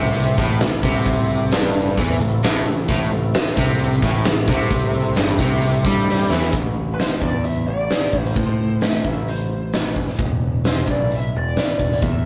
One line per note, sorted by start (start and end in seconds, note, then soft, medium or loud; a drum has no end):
0.00 0.35 C2 medium
0.00 0.38 C3 medium
0.00 2.85 C4 medium
0.00 2.85 E4 medium
0.00 2.85 A4 medium
0.15 closed hi-hat loud
0.38 0.59 A1 loud
0.38 0.60 A2 medium
0.38 kick loud
0.38 closed hi-hat medium
0.60 0.82 A1 medium
0.60 0.79 A2 medium
0.60 snare loud
0.60 closed hi-hat medium
0.83 1.48 C2 medium
0.83 1.51 C3 loud
0.83 kick loud
0.83 closed hi-hat medium
1.06 kick loud
1.06 closed hi-hat loud
1.29 closed hi-hat medium
1.52 1.95 G1 medium
1.52 1.97 G2 medium
1.52 snare loud
1.52 closed hi-hat loud
1.74 closed hi-hat medium
1.97 2.19 E2 loud
1.97 2.20 E3 medium
1.97 kick loud
1.97 closed hi-hat medium
2.20 2.41 A1 medium
2.20 2.39 A2 medium
2.20 closed hi-hat medium
2.43 2.64 A1 medium
2.43 2.65 A2 loud
2.43 snare loud
2.43 closed hi-hat medium
2.66 2.87 A1 medium
2.66 2.85 A2 medium
2.66 closed hi-hat medium
2.88 3.10 A1 medium
2.88 3.11 A2 loud
2.88 6.50 C4 medium
2.88 6.51 E4 medium
2.88 6.50 A4 medium
2.88 kick loud
2.88 closed hi-hat medium
3.11 3.33 A1 medium
3.11 3.30 A2 medium
3.11 closed hi-hat medium
3.34 snare loud
3.34 closed hi-hat medium
3.57 4.00 C2 medium
3.57 4.02 C3 medium
3.57 kick medium
3.57 closed hi-hat medium
3.79 closed hi-hat medium
4.02 4.24 A1 medium
4.02 4.25 A2 medium
4.02 kick medium
4.02 closed hi-hat medium
4.25 4.47 A1 medium
4.25 4.44 A2 medium
4.25 snare loud
4.25 closed hi-hat medium
4.48 5.12 C2 medium
4.48 5.16 C3 medium
4.48 kick loud
4.48 closed hi-hat medium
4.70 kick loud
4.70 closed hi-hat loud
4.94 closed hi-hat medium
5.16 5.38 G1 medium
5.16 5.38 G2 medium
5.16 snare loud
5.16 closed hi-hat medium
5.39 5.81 C2 medium
5.39 5.84 C3 loud
5.39 kick loud
5.39 closed hi-hat medium
5.62 closed hi-hat medium
5.85 6.27 G2 medium
5.85 6.30 G3 medium
5.85 kick loud
5.85 closed hi-hat medium
6.09 snare medium
6.30 6.52 E2 medium
6.30 6.53 E3 loud
6.30 snare medium
6.42 snare medium
6.53 7.18 A1 medium
6.53 kick loud
6.53 closed hi-hat medium
6.94 6.99 B4 medium
6.99 7.21 C5 medium
6.99 snare loud
6.99 closed hi-hat medium
7.22 7.65 E2 medium
7.22 7.44 D5 medium
7.22 kick medium
7.44 7.67 E5 medium
7.44 closed hi-hat medium
7.67 7.89 A1 medium
7.67 8.21 D5 medium
7.90 snare medium
7.90 closed hi-hat medium
8.13 8.35 A1 medium
8.13 kick medium
8.21 8.36 C5 medium
8.25 snare soft
8.36 9.01 A2 medium
8.36 8.79 C5 medium
8.36 kick medium
8.36 closed hi-hat medium
8.81 9.03 E5 medium
8.81 snare loud
8.81 closed hi-hat medium
9.05 9.92 A1 medium
9.05 9.29 E5 medium
9.05 kick medium
9.28 9.71 C5 medium
9.28 closed hi-hat medium
9.73 snare medium
9.73 closed hi-hat medium
9.96 10.07 G1 medium
9.96 kick medium
10.08 snare soft
10.18 10.84 E1 medium
10.18 kick loud
10.18 closed hi-hat medium
10.64 10.90 C5 medium
10.64 snare loud
10.64 closed hi-hat soft
10.88 11.31 B1 medium
10.88 11.13 D5 medium
10.88 kick medium
11.11 closed hi-hat medium
11.15 11.35 E5 medium
11.35 11.56 E1 medium
11.35 12.03 D5 medium
11.56 snare medium
11.56 closed hi-hat soft
11.79 12.02 E1 medium
11.79 kick medium
11.92 snare soft
12.02 12.26 E2 medium
12.02 12.26 E5 medium
12.02 kick loud
12.02 closed hi-hat medium